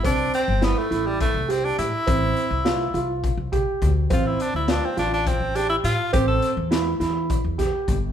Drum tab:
HH |xxxxxxx|xxxxxxx|xxxxxxx|xxxxxxx|
SD |--o-o--|--o----|--oo---|--oo-o-|
BD |o---o--|o---ooo|o---o--|o---ooo|